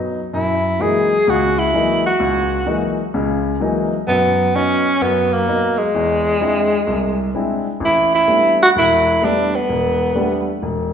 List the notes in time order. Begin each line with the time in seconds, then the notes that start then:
Already playing: F#3 B3 D#4
0.33 F#2 E4
0.80 E3 F#3 G#3 A#3 D#4 G#4
1.27 C#2 C#3 F#4
1.59 E4
1.74 E3 F#3 G#3 A#3 D#4
2.06 F#4
2.20 C#2
2.66 E3 F#3 G#3 A#3 D#4
3.14 C#2 C#3
3.60 E3 F#3 G#3 A#3 D#4
4.07 F#2 F#3 B3
4.54 F#3 B3 C#4 D#4
5.01 F#2 F#3 B3
5.33 A#3
5.47 F#3 B3 D#4
5.78 G#3
5.95 E2
6.41 G#3 C4 D4 E4
6.87 C2
7.35 G#3 C4 D4 E4
7.80 A1
7.85 E4
8.15 E4
8.27 G3 A3 B3 D4
8.62 F#4
8.76 E1 E4
9.22 G3 A3 B3 D4
9.56 B3
9.69 E1
10.15 G3 A3 B3 D4
10.62 E1